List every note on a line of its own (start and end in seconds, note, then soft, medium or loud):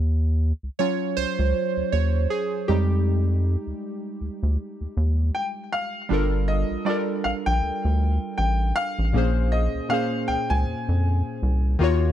0.00 0.53 D#2 loud
0.63 0.70 C#2 soft
0.79 1.89 F#3 medium
0.79 1.89 C#4 medium
0.79 1.90 F4 medium
0.79 1.18 C#5 loud
1.17 1.26 C#2 soft
1.17 1.95 C5 loud
1.39 1.53 C#2 medium
1.77 1.83 D#2 soft
1.92 2.27 D#2 medium
1.92 2.32 C#5 medium
2.30 2.70 G#4 medium
2.68 3.56 F2 loud
2.68 3.22 G3 medium
2.68 3.22 G#3 soft
2.68 3.22 D#4 medium
2.68 5.30 G4 medium
3.67 3.73 D2 soft
4.21 4.30 D2 soft
4.43 4.57 D2 medium
4.81 4.87 D#2 soft
4.97 5.31 D#2 medium
5.35 5.43 G5 medium
5.72 6.51 F5 medium
6.09 6.64 G1 loud
6.09 6.60 G3 medium
6.09 6.61 D4 medium
6.09 6.61 F4 medium
6.09 6.62 A4 medium
6.14 6.62 A#4 medium
6.48 6.88 D#5 medium
6.71 6.77 A#1 soft
6.85 7.86 G3 medium
6.85 7.86 D4 medium
6.85 7.87 F4 medium
6.85 7.87 A4 medium
6.85 6.95 D5 medium
6.90 7.88 A#4 medium
7.24 7.34 A#1 soft
7.24 7.29 F5 medium
7.46 7.61 A#1 medium
7.46 8.36 G5 loud
7.63 7.72 D2 soft
7.85 8.19 D2 loud
8.38 8.72 A1 medium
8.38 8.77 G5 medium
8.76 9.54 F5 loud
8.99 9.13 A1 medium
9.13 9.68 A#1 loud
9.13 9.64 A#2 medium
9.13 9.65 A#3 medium
9.13 9.65 C#4 medium
9.13 9.66 G#4 medium
9.18 9.66 C5 medium
9.52 9.88 D#5 medium
9.75 9.81 C#2 soft
9.89 10.89 A#2 medium
9.89 10.90 A#3 medium
9.89 10.91 C#4 medium
9.89 10.91 G#4 medium
9.89 10.29 F5 loud
9.94 10.92 C5 medium
10.28 10.37 C#2 soft
10.28 10.51 G5 loud
10.50 10.65 C#2 medium
10.50 11.76 G#5 loud
10.67 10.75 F2 soft
10.89 11.22 F2 medium
11.43 11.76 C2 medium
11.79 12.12 D#2 loud
11.79 12.12 D#3 loud
11.79 12.12 A#3 medium
11.79 12.12 F4 medium
11.79 12.12 F#4 medium
11.84 12.12 C#5 loud